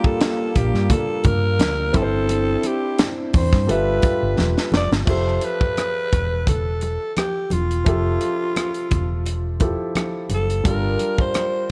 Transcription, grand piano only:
0, 0, Header, 1, 2, 480
1, 0, Start_track
1, 0, Tempo, 696056
1, 1580, Time_signature, 4, 2, 24, 8
1, 8075, End_track
2, 0, Start_track
2, 0, Title_t, "Grand piano"
2, 0, Program_c, 0, 0
2, 0, Control_c, 0, 64, 127
2, 0, Note_on_c, 0, 55, 68
2, 0, Note_on_c, 0, 58, 74
2, 0, Note_on_c, 0, 62, 62
2, 0, Note_on_c, 0, 65, 63
2, 1307, Note_off_c, 0, 55, 0
2, 1310, Note_off_c, 0, 62, 0
2, 1315, Note_off_c, 0, 65, 0
2, 1329, Note_on_c, 0, 60, 73
2, 1337, Note_on_c, 0, 64, 69
2, 1341, Note_off_c, 0, 58, 0
2, 1349, Control_c, 0, 64, 0
2, 1352, Note_on_c, 0, 69, 64
2, 1394, Note_off_c, 0, 69, 0
2, 1396, Note_on_c, 0, 72, 80
2, 1488, Control_c, 0, 64, 127
2, 2509, Note_off_c, 0, 60, 0
2, 2513, Note_off_c, 0, 64, 0
2, 2531, Note_on_c, 0, 55, 65
2, 2536, Note_on_c, 0, 65, 58
2, 2540, Note_on_c, 0, 69, 62
2, 2543, Note_off_c, 0, 72, 0
2, 2546, Control_c, 0, 64, 0
2, 2548, Note_on_c, 0, 71, 60
2, 2556, Note_on_c, 0, 76, 69
2, 2679, Control_c, 0, 64, 127
2, 3475, Note_off_c, 0, 55, 0
2, 3477, Note_off_c, 0, 65, 0
2, 3480, Note_off_c, 0, 69, 0
2, 3484, Note_off_c, 0, 71, 0
2, 3485, Note_off_c, 0, 76, 0
2, 3485, Note_on_c, 0, 53, 62
2, 3496, Note_on_c, 0, 76, 51
2, 3500, Note_on_c, 0, 67, 54
2, 3507, Control_c, 0, 64, 0
2, 3512, Note_on_c, 0, 69, 68
2, 3617, Control_c, 0, 64, 127
2, 5385, Note_off_c, 0, 53, 0
2, 5390, Note_off_c, 0, 76, 0
2, 5392, Note_off_c, 0, 67, 0
2, 5398, Note_off_c, 0, 69, 0
2, 5410, Note_on_c, 0, 53, 60
2, 5421, Note_on_c, 0, 76, 57
2, 5427, Note_on_c, 0, 67, 56
2, 5436, Note_on_c, 0, 69, 69
2, 6592, Note_off_c, 0, 53, 0
2, 6597, Note_off_c, 0, 76, 0
2, 6600, Note_off_c, 0, 67, 0
2, 6605, Note_off_c, 0, 69, 0
2, 6623, Note_on_c, 0, 53, 56
2, 6625, Note_on_c, 0, 64, 49
2, 6629, Note_on_c, 0, 67, 50
2, 6632, Note_on_c, 0, 69, 61
2, 7335, Note_on_c, 0, 55, 60
2, 7342, Note_off_c, 0, 53, 0
2, 7343, Note_on_c, 0, 62, 54
2, 7344, Note_off_c, 0, 64, 0
2, 7345, Note_off_c, 0, 67, 0
2, 7347, Note_off_c, 0, 69, 0
2, 7349, Control_c, 0, 64, 0
2, 7352, Note_on_c, 0, 65, 57
2, 7361, Note_on_c, 0, 69, 54
2, 7399, Note_off_c, 0, 69, 0
2, 7405, Note_on_c, 0, 70, 68
2, 7467, Control_c, 0, 64, 127
2, 8075, Note_off_c, 0, 55, 0
2, 8075, Note_off_c, 0, 62, 0
2, 8075, Note_off_c, 0, 65, 0
2, 8075, Note_off_c, 0, 70, 0
2, 8075, End_track
0, 0, End_of_file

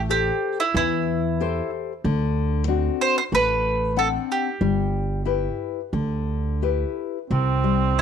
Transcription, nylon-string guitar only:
0, 0, Header, 1, 2, 480
1, 0, Start_track
1, 0, Key_signature, 1, "major"
1, 0, Tempo, 645856
1, 1519, Time_signature, 4, 2, 24, 8
1, 3907, Tempo, 681044
1, 5852, End_track
2, 0, Start_track
2, 0, Title_t, "Nylon-string guitar"
2, 0, Program_c, 0, 24
2, 69, Note_on_c, 0, 67, 40
2, 74, Note_on_c, 0, 69, 41
2, 76, Note_on_c, 0, 72, 47
2, 457, Note_off_c, 0, 67, 0
2, 458, Note_off_c, 0, 69, 0
2, 460, Note_off_c, 0, 72, 0
2, 559, Note_on_c, 0, 52, 59
2, 1030, Note_off_c, 0, 52, 0
2, 1044, Note_on_c, 0, 67, 50
2, 1047, Note_on_c, 0, 69, 45
2, 1050, Note_on_c, 0, 72, 53
2, 1425, Note_off_c, 0, 67, 0
2, 1427, Note_off_c, 0, 69, 0
2, 1427, Note_off_c, 0, 72, 0
2, 1523, Note_on_c, 0, 50, 71
2, 1981, Note_off_c, 0, 50, 0
2, 1987, Note_on_c, 0, 60, 42
2, 1991, Note_on_c, 0, 62, 42
2, 1995, Note_on_c, 0, 66, 47
2, 2371, Note_off_c, 0, 60, 0
2, 2372, Note_off_c, 0, 62, 0
2, 2376, Note_off_c, 0, 66, 0
2, 2470, Note_on_c, 0, 57, 55
2, 2935, Note_off_c, 0, 57, 0
2, 2947, Note_on_c, 0, 60, 44
2, 2948, Note_on_c, 0, 62, 40
2, 2951, Note_on_c, 0, 78, 49
2, 3330, Note_off_c, 0, 60, 0
2, 3331, Note_off_c, 0, 62, 0
2, 3332, Note_off_c, 0, 78, 0
2, 3425, Note_on_c, 0, 55, 62
2, 3892, Note_off_c, 0, 55, 0
2, 3904, Note_on_c, 0, 64, 38
2, 3907, Note_on_c, 0, 67, 39
2, 3912, Note_on_c, 0, 71, 42
2, 4284, Note_off_c, 0, 64, 0
2, 4286, Note_off_c, 0, 67, 0
2, 4287, Note_off_c, 0, 71, 0
2, 4382, Note_on_c, 0, 50, 53
2, 4857, Note_off_c, 0, 50, 0
2, 4870, Note_on_c, 0, 67, 38
2, 4873, Note_on_c, 0, 64, 43
2, 4875, Note_on_c, 0, 71, 46
2, 5257, Note_off_c, 0, 67, 0
2, 5258, Note_off_c, 0, 64, 0
2, 5260, Note_off_c, 0, 71, 0
2, 5354, Note_on_c, 0, 48, 60
2, 5585, Note_on_c, 0, 55, 44
2, 5818, Note_off_c, 0, 55, 0
2, 5819, Note_off_c, 0, 48, 0
2, 5827, Note_on_c, 0, 48, 46
2, 5852, Note_off_c, 0, 48, 0
2, 5852, End_track
0, 0, End_of_file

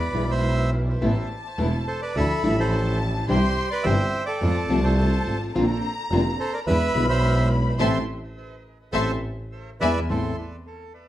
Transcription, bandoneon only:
0, 0, Header, 1, 2, 480
1, 0, Start_track
1, 0, Key_signature, 0, "minor"
1, 0, Tempo, 575816
1, 844, Time_signature, 4, 2, 24, 8
1, 1801, Tempo, 563910
1, 7081, Tempo, 573066
1, 9358, End_track
2, 0, Start_track
2, 0, Title_t, "Bandoneon"
2, 0, Program_c, 0, 23
2, 0, Note_on_c, 0, 71, 66
2, 0, Note_on_c, 0, 74, 78
2, 210, Note_off_c, 0, 71, 0
2, 256, Note_on_c, 0, 72, 68
2, 257, Note_off_c, 0, 74, 0
2, 258, Note_on_c, 0, 76, 97
2, 585, Note_off_c, 0, 72, 0
2, 586, Note_off_c, 0, 76, 0
2, 1563, Note_on_c, 0, 72, 74
2, 1565, Note_on_c, 0, 69, 65
2, 1674, Note_off_c, 0, 72, 0
2, 1675, Note_off_c, 0, 69, 0
2, 1681, Note_on_c, 0, 74, 80
2, 1687, Note_on_c, 0, 71, 58
2, 1795, Note_off_c, 0, 71, 0
2, 1803, Note_on_c, 0, 69, 80
2, 1804, Note_off_c, 0, 74, 0
2, 1805, Note_on_c, 0, 76, 103
2, 2139, Note_off_c, 0, 69, 0
2, 2173, Note_on_c, 0, 72, 81
2, 2174, Note_on_c, 0, 69, 60
2, 2175, Note_off_c, 0, 76, 0
2, 2503, Note_off_c, 0, 72, 0
2, 2504, Note_off_c, 0, 69, 0
2, 2765, Note_on_c, 0, 72, 84
2, 2769, Note_on_c, 0, 67, 68
2, 3099, Note_off_c, 0, 72, 0
2, 3101, Note_off_c, 0, 67, 0
2, 3118, Note_on_c, 0, 74, 102
2, 3130, Note_on_c, 0, 71, 69
2, 3225, Note_on_c, 0, 76, 102
2, 3238, Note_off_c, 0, 71, 0
2, 3240, Note_on_c, 0, 72, 76
2, 3244, Note_off_c, 0, 74, 0
2, 3569, Note_off_c, 0, 76, 0
2, 3577, Note_off_c, 0, 72, 0
2, 3587, Note_on_c, 0, 74, 86
2, 3604, Note_on_c, 0, 69, 73
2, 4053, Note_off_c, 0, 69, 0
2, 4076, Note_on_c, 0, 72, 84
2, 4091, Note_on_c, 0, 69, 68
2, 4093, Note_off_c, 0, 74, 0
2, 4177, Note_off_c, 0, 72, 0
2, 4186, Note_off_c, 0, 69, 0
2, 4190, Note_on_c, 0, 72, 72
2, 4199, Note_on_c, 0, 69, 60
2, 4534, Note_off_c, 0, 72, 0
2, 4539, Note_off_c, 0, 69, 0
2, 5407, Note_on_c, 0, 69, 66
2, 5409, Note_on_c, 0, 72, 85
2, 5517, Note_off_c, 0, 69, 0
2, 5525, Note_on_c, 0, 70, 69
2, 5528, Note_on_c, 0, 74, 78
2, 5529, Note_off_c, 0, 72, 0
2, 5579, Note_off_c, 0, 70, 0
2, 5580, Note_off_c, 0, 74, 0
2, 5637, Note_on_c, 0, 71, 82
2, 5640, Note_on_c, 0, 76, 107
2, 5972, Note_off_c, 0, 71, 0
2, 5974, Note_off_c, 0, 76, 0
2, 6001, Note_on_c, 0, 72, 71
2, 6006, Note_on_c, 0, 76, 100
2, 6333, Note_off_c, 0, 72, 0
2, 6336, Note_off_c, 0, 76, 0
2, 6601, Note_on_c, 0, 76, 81
2, 6606, Note_on_c, 0, 69, 85
2, 6606, Note_on_c, 0, 72, 84
2, 6754, Note_off_c, 0, 76, 0
2, 6757, Note_off_c, 0, 69, 0
2, 6757, Note_off_c, 0, 72, 0
2, 7551, Note_on_c, 0, 69, 91
2, 7552, Note_on_c, 0, 76, 97
2, 7553, Note_on_c, 0, 72, 86
2, 7709, Note_off_c, 0, 69, 0
2, 7710, Note_off_c, 0, 76, 0
2, 7711, Note_off_c, 0, 72, 0
2, 8289, Note_on_c, 0, 71, 92
2, 8293, Note_on_c, 0, 74, 95
2, 8293, Note_on_c, 0, 76, 96
2, 8444, Note_off_c, 0, 71, 0
2, 8447, Note_off_c, 0, 74, 0
2, 8447, Note_off_c, 0, 76, 0
2, 8537, Note_on_c, 0, 69, 70
2, 8756, Note_off_c, 0, 69, 0
2, 9358, End_track
0, 0, End_of_file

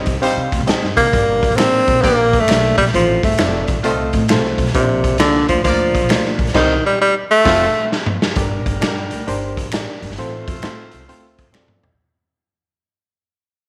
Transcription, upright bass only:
0, 0, Header, 1, 3, 480
1, 0, Start_track
1, 0, Tempo, 452489
1, 1203, Time_signature, 4, 2, 24, 8
1, 14521, End_track
2, 0, Start_track
2, 0, Title_t, "Upright bass"
2, 0, Program_c, 0, 32
2, 73, Note_on_c, 0, 36, 87
2, 210, Note_off_c, 0, 36, 0
2, 390, Note_on_c, 0, 48, 96
2, 520, Note_off_c, 0, 48, 0
2, 553, Note_on_c, 0, 38, 88
2, 622, Note_off_c, 0, 38, 0
2, 641, Note_on_c, 0, 36, 104
2, 708, Note_off_c, 0, 36, 0
2, 872, Note_on_c, 0, 43, 90
2, 1000, Note_off_c, 0, 43, 0
2, 1032, Note_on_c, 0, 48, 101
2, 1167, Note_off_c, 0, 48, 0
2, 1202, Note_on_c, 0, 31, 112
2, 1519, Note_off_c, 0, 31, 0
2, 1600, Note_on_c, 0, 33, 87
2, 1916, Note_off_c, 0, 33, 0
2, 1999, Note_on_c, 0, 34, 92
2, 2130, Note_off_c, 0, 34, 0
2, 2161, Note_on_c, 0, 34, 98
2, 2477, Note_off_c, 0, 34, 0
2, 2553, Note_on_c, 0, 31, 89
2, 2620, Note_off_c, 0, 31, 0
2, 2637, Note_on_c, 0, 35, 89
2, 2888, Note_off_c, 0, 35, 0
2, 2948, Note_on_c, 0, 34, 110
2, 3082, Note_off_c, 0, 34, 0
2, 3118, Note_on_c, 0, 33, 110
2, 3367, Note_off_c, 0, 33, 0
2, 3430, Note_on_c, 0, 31, 100
2, 3563, Note_off_c, 0, 31, 0
2, 3595, Note_on_c, 0, 29, 94
2, 3845, Note_off_c, 0, 29, 0
2, 3913, Note_on_c, 0, 33, 104
2, 4044, Note_off_c, 0, 33, 0
2, 4066, Note_on_c, 0, 36, 93
2, 4319, Note_off_c, 0, 36, 0
2, 4386, Note_on_c, 0, 45, 116
2, 4562, Note_on_c, 0, 36, 94
2, 4578, Note_off_c, 0, 45, 0
2, 4808, Note_off_c, 0, 36, 0
2, 4859, Note_on_c, 0, 35, 110
2, 4995, Note_off_c, 0, 35, 0
2, 5038, Note_on_c, 0, 34, 107
2, 5353, Note_off_c, 0, 34, 0
2, 5431, Note_on_c, 0, 36, 88
2, 5747, Note_off_c, 0, 36, 0
2, 5830, Note_on_c, 0, 38, 92
2, 5961, Note_off_c, 0, 38, 0
2, 5995, Note_on_c, 0, 38, 104
2, 6310, Note_off_c, 0, 38, 0
2, 6390, Note_on_c, 0, 34, 100
2, 6455, Note_off_c, 0, 34, 0
2, 6473, Note_on_c, 0, 38, 90
2, 6722, Note_off_c, 0, 38, 0
2, 6778, Note_on_c, 0, 34, 100
2, 6913, Note_off_c, 0, 34, 0
2, 6949, Note_on_c, 0, 36, 108
2, 7161, Note_off_c, 0, 36, 0
2, 7911, Note_on_c, 0, 29, 103
2, 8123, Note_off_c, 0, 29, 0
2, 8873, Note_on_c, 0, 31, 100
2, 9123, Note_off_c, 0, 31, 0
2, 9185, Note_on_c, 0, 31, 100
2, 9318, Note_off_c, 0, 31, 0
2, 9359, Note_on_c, 0, 43, 94
2, 9607, Note_off_c, 0, 43, 0
2, 9678, Note_on_c, 0, 38, 86
2, 9806, Note_off_c, 0, 38, 0
2, 9841, Note_on_c, 0, 31, 96
2, 10155, Note_off_c, 0, 31, 0
2, 10236, Note_on_c, 0, 33, 85
2, 10426, Note_off_c, 0, 33, 0
2, 10631, Note_on_c, 0, 31, 96
2, 10696, Note_off_c, 0, 31, 0
2, 10716, Note_on_c, 0, 31, 86
2, 10780, Note_off_c, 0, 31, 0
2, 10799, Note_on_c, 0, 33, 100
2, 11049, Note_off_c, 0, 33, 0
2, 11110, Note_on_c, 0, 41, 99
2, 11243, Note_off_c, 0, 41, 0
2, 11278, Note_on_c, 0, 45, 102
2, 11529, Note_off_c, 0, 45, 0
2, 11598, Note_on_c, 0, 36, 87
2, 11729, Note_off_c, 0, 36, 0
2, 11772, Note_on_c, 0, 38, 88
2, 12085, Note_off_c, 0, 38, 0
2, 12173, Note_on_c, 0, 39, 92
2, 12233, Note_off_c, 0, 39, 0
2, 12252, Note_on_c, 0, 41, 84
2, 12373, Note_off_c, 0, 41, 0
2, 12561, Note_on_c, 0, 35, 93
2, 12625, Note_off_c, 0, 35, 0
2, 12650, Note_on_c, 0, 34, 80
2, 12712, Note_off_c, 0, 34, 0
2, 14521, End_track
3, 0, Start_track
3, 0, Title_t, "Muted upright bass strokes"
3, 722, Note_on_c, 9, 29, 46
3, 828, Note_off_c, 9, 29, 0
3, 14521, End_track
0, 0, End_of_file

